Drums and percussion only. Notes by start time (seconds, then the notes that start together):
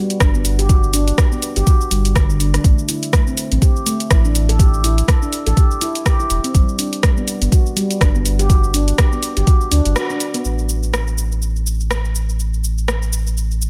0.10 closed hi-hat, shaker
0.20 kick, cross-stick, closed hi-hat, shaker
0.34 shaker
0.45 open hi-hat, shaker
0.59 closed hi-hat, shaker
0.69 kick, closed hi-hat, shaker
0.83 shaker
0.93 open hi-hat, shaker
1.08 closed hi-hat, shaker
1.18 kick, cross-stick, closed hi-hat, shaker
1.32 shaker
1.42 open hi-hat, shaker
1.56 closed hi-hat, shaker
1.67 kick, closed hi-hat, shaker
1.81 shaker
1.91 open hi-hat, shaker
2.05 closed hi-hat, shaker
2.15 kick, cross-stick, closed hi-hat, shaker
2.30 shaker
2.40 open hi-hat, shaker
2.54 cross-stick, closed hi-hat, shaker
2.64 kick, closed hi-hat, shaker
2.78 shaker
2.89 open hi-hat, shaker
3.03 closed hi-hat, shaker
3.13 kick, cross-stick, closed hi-hat, shaker
3.27 shaker
3.37 open hi-hat, shaker
3.52 closed hi-hat, shaker
3.62 kick, closed hi-hat, shaker
3.76 shaker
3.86 open hi-hat, shaker
4.00 closed hi-hat, shaker
4.11 kick, cross-stick, closed hi-hat, shaker
4.25 shaker
4.35 open hi-hat, shaker
4.49 closed hi-hat, shaker
4.59 kick, closed hi-hat, shaker
4.74 shaker
4.84 open hi-hat, shaker
4.98 closed hi-hat, shaker
5.08 kick, cross-stick, closed hi-hat, shaker
5.22 shaker
5.33 open hi-hat, shaker
5.47 closed hi-hat, shaker
5.57 kick, closed hi-hat, shaker
5.71 shaker
5.81 open hi-hat, shaker
5.95 closed hi-hat, shaker
6.06 kick, cross-stick, closed hi-hat, shaker
6.20 shaker
6.30 open hi-hat, shaker
6.44 closed hi-hat, shaker
6.54 kick, closed hi-hat, shaker
6.69 shaker
6.79 open hi-hat, shaker
6.93 closed hi-hat, shaker
7.03 kick, cross-stick, closed hi-hat, shaker
7.17 shaker
7.28 open hi-hat, shaker
7.42 closed hi-hat, shaker
7.52 kick, closed hi-hat, shaker
7.66 shaker
7.77 open hi-hat, shaker
7.91 closed hi-hat, shaker
8.01 kick, cross-stick, closed hi-hat, shaker
8.15 shaker
8.25 open hi-hat, shaker
8.39 closed hi-hat, shaker
8.50 kick, closed hi-hat, shaker
8.64 shaker
8.74 open hi-hat, shaker
8.88 closed hi-hat, shaker
8.98 kick, cross-stick, closed hi-hat, shaker
9.12 shaker
9.23 open hi-hat, shaker
9.37 closed hi-hat, shaker
9.47 kick, closed hi-hat, shaker
9.61 shaker
9.72 open hi-hat, shaker
9.85 closed hi-hat, shaker
9.96 cross-stick, closed hi-hat, shaker
10.10 shaker
10.20 open hi-hat, shaker
10.34 closed hi-hat, shaker
10.45 shaker
10.59 shaker
10.69 shaker
10.83 shaker
10.94 cross-stick, shaker
11.08 shaker
11.18 shaker
11.32 shaker
11.42 shaker
11.56 shaker
11.67 shaker
11.80 shaker
11.91 cross-stick, shaker
12.05 shaker
12.15 shaker
12.29 shaker
12.40 shaker
12.54 shaker
12.64 shaker
12.78 shaker
12.88 cross-stick, shaker
13.02 shaker
13.13 shaker
13.27 shaker
13.37 shaker
13.51 shaker
13.62 shaker